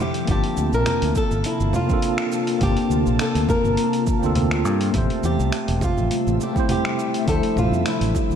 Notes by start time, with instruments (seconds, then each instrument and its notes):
0.00 ambient pad C3 A#3 F4 A5, nylon-string guitar G4
0.14 closed hi-hat, cabasa
0.25 fingered electric bass G1, tine electric piano A#3 C4 D4, kick, closed hi-hat, cabasa
0.30 tine electric piano F4 A5, nylon-string guitar G4
0.44 closed hi-hat
0.57 fingered electric bass D2, cabasa
0.73 fingered electric bass A#1, nylon-string guitar A#4, cabasa
0.86 finger snap, closed hi-hat, low conga, cabasa
1.02 fingered electric bass D2, closed hi-hat, cabasa
1.15 nylon-string guitar A4, kick, cabasa
1.31 fingered electric bass G1, cabasa
1.44 nylon-string guitar E4, closed hi-hat, cabasa
1.60 fingered electric bass G1, cabasa
1.73 nylon-string guitar F4, low conga, cabasa
1.86 tine electric piano A#3 C4 D4, kick, cabasa
1.91 tine electric piano F4 A4
2.02 closed hi-hat, cabasa
2.18 finger snap, closed hi-hat
2.32 cabasa
2.47 closed hi-hat, cabasa
2.59 fingered electric bass G1, tine electric piano A#3 C4 D4, kick, closed hi-hat, low conga, cabasa
2.63 tine electric piano F4 A5, nylon-string guitar G4
2.77 closed hi-hat
2.90 fingered electric bass D2, cabasa
3.06 fingered electric bass A#1, cabasa
3.19 nylon-string guitar A4, finger snap, closed hi-hat, cabasa
3.35 fingered electric bass D2, closed hi-hat, cabasa
3.49 nylon-string guitar A#4, kick, low conga, cabasa
3.64 fingered electric bass G1, cabasa
3.77 closed hi-hat, cabasa
3.93 closed hi-hat, cabasa
4.07 kick, cabasa
4.19 fingered electric bass D2, tine electric piano A#3 C4 D4, cabasa
4.24 tine electric piano F4 A4
4.36 closed hi-hat, low conga, cabasa
4.51 finger snap, closed hi-hat
4.65 fingered electric bass G2, cabasa
4.81 closed hi-hat, cabasa
4.91 fingered electric bass A1, ambient pad G3 A3 E5, tine electric piano A3 C4 E5, kick, closed hi-hat, low conga, cabasa
4.96 tine electric piano G4 C5
5.10 closed hi-hat
5.23 fingered electric bass E2, nylon-string guitar G4, cabasa
5.39 fingered electric bass C2, high conga, cabasa
5.52 finger snap, closed hi-hat, cabasa
5.68 fingered electric bass E1, closed hi-hat, cabasa
5.81 nylon-string guitar F4, kick, high bongo, low conga, cabasa
5.98 fingered electric bass A1, low conga, cabasa
6.11 closed hi-hat, cabasa
6.27 fingered electric bass A1, cabasa
6.40 nylon-string guitar G4, high bongo, cabasa
6.53 tine electric piano A3 C4 E4, kick, high conga, cabasa
6.58 tine electric piano G4 C5
6.69 nylon-string guitar G4, closed hi-hat, low conga, cabasa
6.85 finger snap, closed hi-hat
6.99 cabasa
7.14 closed hi-hat, cabasa
7.24 fingered electric bass D2, ambient pad D3 F3 C4, tine electric piano A3 D4 E4, kick, closed hi-hat, cabasa
7.29 tine electric piano F3 C5, nylon-string guitar A4
7.43 closed hi-hat
7.56 fingered electric bass A1, nylon-string guitar F4, low conga, cabasa
7.71 fingered electric bass F2, high conga, cabasa
7.86 nylon-string guitar E4, finger snap, closed hi-hat, cabasa
8.01 fingered electric bass A1, closed hi-hat, cabasa
8.15 kick, high bongo, cabasa
8.30 fingered electric bass D2, low conga, cabasa